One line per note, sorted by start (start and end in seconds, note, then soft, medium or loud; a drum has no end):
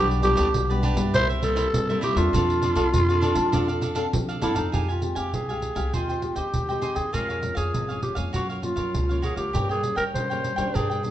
0.00 0.33 B1 loud
0.00 0.51 B2 medium
0.00 0.18 G3 medium
0.00 0.18 B3 medium
0.00 0.18 D4 medium
0.00 0.21 D4 medium
0.00 0.22 G4 medium
0.00 0.23 B4 medium
0.00 0.23 D5 medium
0.11 pandeiro soft
0.22 0.51 G3 medium
0.22 0.52 B3 medium
0.22 0.35 D4 soft
0.22 0.52 D4 medium
0.22 0.36 G4 medium
0.22 0.80 G4 loud
0.22 0.36 B4 medium
0.22 0.37 D5 medium
0.22 pandeiro medium
0.36 0.50 D2 medium
0.36 0.47 D4 medium
0.36 0.47 G4 medium
0.36 0.48 B4 medium
0.36 0.48 D5 medium
0.36 pandeiro medium
0.54 0.92 B1 medium
0.54 1.11 B2 medium
0.54 pandeiro medium
0.70 0.95 G3 medium
0.70 0.95 B3 medium
0.70 0.95 D4 medium
0.70 0.82 G4 soft
0.70 0.83 B4 soft
0.70 0.83 D5 medium
0.70 pandeiro soft
0.83 1.12 D4 medium
0.83 1.13 G4 medium
0.83 1.13 B4 medium
0.83 1.13 D5 medium
0.83 pandeiro medium
0.96 1.10 G2 medium
0.96 1.38 G3 medium
0.96 1.38 A#3 medium
0.96 1.38 E4 medium
0.96 pandeiro medium
1.13 1.65 C2 medium
1.13 1.71 C3 medium
1.13 1.28 E4 medium
1.13 1.28 A#4 medium
1.13 1.28 C5 loud
1.13 1.29 C5 medium
1.13 1.28 E5 medium
1.13 pandeiro medium
1.29 1.42 A#4 soft
1.29 1.43 C5 soft
1.29 1.43 E5 soft
1.29 pandeiro soft
1.42 1.71 G3 medium
1.42 1.71 A#3 medium
1.42 1.55 E4 soft
1.42 1.72 E4 medium
1.42 1.99 A4 loud
1.42 1.55 A#4 medium
1.42 1.56 C5 medium
1.42 1.56 E5 medium
1.42 pandeiro medium
1.56 1.66 E4 medium
1.56 1.67 A#4 medium
1.56 1.67 C5 medium
1.56 1.67 E5 medium
1.56 pandeiro medium
1.73 2.31 G2 medium
1.73 2.12 C3 medium
1.73 pandeiro medium
1.89 2.14 G3 medium
1.89 2.14 A#3 medium
1.89 2.15 E4 medium
1.89 2.01 A#4 soft
1.89 2.02 C5 soft
1.89 2.02 E5 soft
1.89 pandeiro soft
2.01 2.16 E4 medium
2.01 2.19 G4 loud
2.01 2.17 A#4 medium
2.01 2.15 C5 medium
2.01 2.14 E5 medium
2.01 pandeiro medium
2.15 2.30 E2 medium
2.15 2.58 C4 medium
2.15 2.58 D4 medium
2.15 4.13 F4 medium
2.15 2.58 A4 medium
2.15 2.32 A#4 soft
2.15 2.31 C5 soft
2.15 2.31 E5 soft
2.15 pandeiro medium
2.33 2.72 F2 loud
2.33 2.91 F3 medium
2.33 2.60 D4 medium
2.33 2.61 A4 medium
2.33 2.62 D5 medium
2.33 2.63 F5 medium
2.33 pandeiro medium
2.50 pandeiro soft
2.62 2.74 D4 medium
2.62 2.74 A4 medium
2.62 2.75 D5 medium
2.62 2.76 F5 medium
2.62 pandeiro medium
2.75 2.90 C2 medium
2.75 3.17 C4 medium
2.75 2.86 D4 medium
2.75 3.18 D4 medium
2.75 2.86 A4 medium
2.75 3.18 A4 medium
2.75 2.86 D5 medium
2.75 2.87 F5 medium
2.75 pandeiro medium
2.93 3.32 F2 medium
2.93 3.50 C3 medium
2.93 pandeiro medium
3.09 3.21 A4 soft
3.09 3.22 D5 soft
3.09 3.22 F5 medium
3.09 pandeiro soft
3.21 3.48 C4 medium
3.21 3.51 D4 medium
3.21 3.48 D4 medium
3.21 3.52 A4 medium
3.21 3.48 A4 medium
3.21 3.52 D5 medium
3.21 3.52 F5 medium
3.21 pandeiro medium
3.35 3.50 F3 medium
3.35 pandeiro medium
3.52 4.05 F2 medium
3.52 4.10 F3 medium
3.52 3.93 C4 medium
3.52 3.67 D4 medium
3.52 3.93 D4 medium
3.52 3.67 A4 medium
3.52 3.94 A4 medium
3.52 3.67 D5 medium
3.52 3.67 F5 medium
3.52 pandeiro medium
3.68 3.81 A4 soft
3.68 3.82 D5 soft
3.68 3.82 F5 soft
3.68 pandeiro soft
3.81 3.94 D4 soft
3.81 3.94 A4 soft
3.81 3.95 D5 medium
3.81 3.95 F5 medium
3.81 pandeiro medium
3.95 4.37 C4 medium
3.95 4.06 D4 medium
3.95 4.37 D4 medium
3.95 4.06 A4 medium
3.95 4.38 A4 medium
3.95 4.06 D5 medium
3.95 4.06 F5 medium
3.95 pandeiro medium
4.13 4.70 C3 medium
4.13 4.39 F3 loud
4.13 pandeiro medium
4.29 4.41 A4 soft
4.29 4.42 D5 soft
4.29 4.42 F5 medium
4.29 pandeiro soft
4.41 4.56 G2 medium
4.41 4.68 C4 medium
4.41 4.56 D4 medium
4.41 4.68 D4 medium
4.41 4.56 E4 medium
4.41 4.56 A4 medium
4.41 4.68 A4 medium
4.41 4.55 D5 medium
4.41 4.54 F5 medium
4.41 pandeiro medium
4.55 4.71 F2 medium
4.55 4.86 D#4 medium
4.55 4.72 A4 soft
4.55 4.71 D5 soft
4.55 4.71 F5 soft
4.55 pandeiro medium
4.72 5.12 F2 medium
4.72 5.30 F3 soft
4.72 4.98 G#3 soft
4.72 4.99 C4 soft
4.72 4.87 G4 medium
4.72 4.99 G4 soft
4.72 4.87 G#4 medium
4.72 4.88 F5 medium
4.72 4.87 G#5 medium
4.72 pandeiro medium
4.88 5.19 F4 medium
4.88 5.01 G4 soft
4.88 5.02 F5 soft
4.88 5.02 G#5 soft
4.88 pandeiro soft
5.02 5.31 G#3 soft
5.02 5.31 C4 soft
5.02 5.31 G4 medium
5.02 muted cavaquinho stroke soft
5.02 pandeiro soft
5.15 5.30 F2 medium
5.15 5.33 G4 medium
5.15 5.47 G4 soft
5.15 5.46 F5 soft
5.15 5.46 G#5 medium
5.15 pandeiro medium
5.33 5.72 C2 medium
5.33 5.96 G#4 medium
5.33 pandeiro medium
5.49 5.74 G#3 soft
5.49 5.74 C4 soft
5.49 5.74 G4 medium
5.49 5.76 G4 soft
5.49 5.75 F5 soft
5.49 5.74 G#5 soft
5.49 pandeiro soft
5.62 pandeiro soft
5.75 5.90 C2 medium
5.75 6.18 G#3 soft
5.75 6.18 C4 soft
5.75 6.18 G4 medium
5.75 5.92 G4 soft
5.75 5.91 F5 soft
5.75 5.91 G#5 medium
5.75 pandeiro medium
5.93 6.32 D#2 medium
5.93 6.51 D#3 soft
5.93 6.36 F4 medium
5.93 6.07 G#4 medium
5.93 6.08 C5 medium
5.93 6.08 D#5 medium
5.93 6.08 G5 medium
5.93 pandeiro medium
6.09 6.21 C5 soft
6.09 6.22 D#5 soft
6.09 6.22 G5 soft
6.09 pandeiro soft
6.22 6.63 G#3 soft
6.22 6.63 C4 soft
6.22 6.64 G4 medium
6.22 muted cavaquinho stroke soft
6.22 pandeiro soft
6.36 6.50 D#2 medium
6.36 6.98 G4 medium
6.36 6.67 C5 soft
6.36 6.67 D#5 soft
6.36 6.66 G5 medium
6.36 pandeiro medium
6.54 6.92 D#2 medium
6.54 7.11 D#3 soft
6.54 pandeiro medium
6.69 7.09 G#3 soft
6.69 7.10 C4 medium
6.69 7.10 G4 medium
6.69 6.81 C5 soft
6.69 6.82 D#5 soft
6.69 6.83 G5 soft
6.69 pandeiro soft
6.82 6.96 G#4 medium
6.82 6.96 C5 medium
6.82 6.95 D#5 medium
6.82 6.94 G5 medium
6.82 pandeiro soft
6.95 7.10 D#2 medium
6.95 7.15 G#4 medium
6.95 7.12 C5 soft
6.95 7.11 D#5 soft
6.95 7.11 G5 soft
6.95 pandeiro medium
7.13 7.71 F2 soft
7.13 7.52 F2 medium
7.13 7.39 F3 soft
7.13 7.39 G#3 soft
7.13 7.39 C#4 soft
7.13 7.27 F4 medium
7.13 7.27 G#4 medium
7.13 7.58 A#4 medium
7.13 7.28 C#5 medium
7.13 7.28 F5 medium
7.13 pandeiro medium
7.29 7.41 G#4 soft
7.29 7.41 C#5 soft
7.29 7.42 F5 soft
7.29 pandeiro soft
7.42 7.83 F3 soft
7.42 7.83 G#3 medium
7.42 7.84 C#4 medium
7.42 muted cavaquinho stroke soft
7.42 pandeiro medium
7.55 7.70 F2 medium
7.55 8.03 G#4 medium
7.55 7.87 G#4 soft
7.55 7.86 C#5 soft
7.55 7.86 F5 soft
7.55 pandeiro medium
7.74 8.12 G#1 medium
7.74 8.31 F2 soft
7.74 pandeiro medium
7.89 8.14 F3 medium
7.89 8.15 G#3 soft
7.89 8.15 C#4 medium
7.89 8.17 G#4 soft
7.89 8.15 C#5 soft
7.89 8.14 F5 soft
7.89 pandeiro soft
8.03 8.17 G4 medium
8.03 pandeiro soft
8.15 8.31 F2 medium
8.15 8.58 F3 soft
8.15 8.58 A#3 medium
8.15 8.58 C#4 soft
8.15 8.32 G#4 soft
8.15 8.32 C#5 soft
8.15 8.31 F5 medium
8.15 pandeiro medium
8.33 8.91 F#2 soft
8.33 8.72 F#2 medium
8.33 8.47 F#4 medium
8.33 8.48 F#4 medium
8.33 8.48 A#4 medium
8.33 8.48 C#5 medium
8.33 8.48 F5 medium
8.33 pandeiro medium
8.49 8.62 A#4 soft
8.49 8.62 C#5 soft
8.49 8.62 F5 soft
8.49 pandeiro soft
8.62 9.04 F3 medium
8.62 9.04 A#3 medium
8.62 9.04 C#4 medium
8.62 9.25 F4 medium
8.62 muted cavaquinho stroke soft
8.62 pandeiro soft
8.76 8.90 F#2 medium
8.76 9.08 A#4 soft
8.76 9.07 C#5 soft
8.76 9.06 F5 medium
8.76 pandeiro medium
8.94 9.33 C#2 medium
8.94 9.51 C#3 soft
8.94 pandeiro medium
9.09 9.50 F3 medium
9.09 9.50 A#3 soft
9.09 9.50 C#4 medium
9.09 9.22 A#4 soft
9.09 9.23 C#5 soft
9.09 9.23 F5 soft
9.09 pandeiro soft
9.22 9.37 F#4 medium
9.22 9.36 G#4 medium
9.22 9.37 A#4 medium
9.22 9.36 C#5 medium
9.22 9.35 F5 medium
9.22 pandeiro soft
9.36 9.51 C#2 medium
9.36 9.66 G4 medium
9.36 9.53 A#4 soft
9.36 9.52 C#5 soft
9.36 9.51 F5 soft
9.36 pandeiro medium
9.53 10.11 G2 soft
9.53 9.93 G2 medium
9.53 9.72 G3 soft
9.53 9.72 A#3 soft
9.53 9.72 C#4 medium
9.53 9.68 G4 medium
9.53 9.68 A#4 medium
9.53 9.69 C#5 medium
9.53 9.68 G5 medium
9.53 pandeiro medium
9.69 9.97 G#4 medium
9.69 9.82 A#4 soft
9.69 9.82 C#5 soft
9.69 9.83 G5 soft
9.69 pandeiro soft
9.83 10.12 G3 soft
9.83 10.12 A#3 soft
9.83 10.13 C#4 medium
9.83 muted cavaquinho stroke soft
9.83 pandeiro soft
9.96 10.11 G2 medium
9.96 10.04 A#4 medium
9.96 10.28 A#4 soft
9.96 10.27 C#5 medium
9.96 10.27 G5 medium
9.96 pandeiro medium
10.14 10.72 G2 soft
10.14 10.53 C#3 medium
10.14 10.77 C5 medium
10.14 pandeiro medium
10.30 10.55 G3 medium
10.30 10.55 A#3 soft
10.30 10.56 C#4 medium
10.30 10.57 A#4 soft
10.30 10.56 C#5 soft
10.30 10.55 G5 soft
10.30 pandeiro soft
10.44 pandeiro medium
10.56 10.71 C#3 medium
10.56 10.99 G3 medium
10.56 10.99 A#3 soft
10.56 10.99 D4 medium
10.56 10.73 A#4 soft
10.56 10.72 C#5 soft
10.56 10.72 G5 soft
10.56 pandeiro medium
10.74 11.11 G2 soft
10.74 11.11 G2 medium
10.74 10.88 D4 medium
10.74 11.11 G#4 medium
10.74 10.89 A#4 medium
10.74 10.89 D5 medium
10.74 10.88 G5 medium
10.74 pandeiro medium
10.90 11.02 A#4 soft
10.90 11.03 D5 soft
10.90 11.03 G5 soft
10.90 pandeiro soft
11.03 11.11 G3 medium
11.03 11.11 A#3 soft
11.03 11.11 D4 medium
11.03 muted cavaquinho stroke soft
11.03 pandeiro soft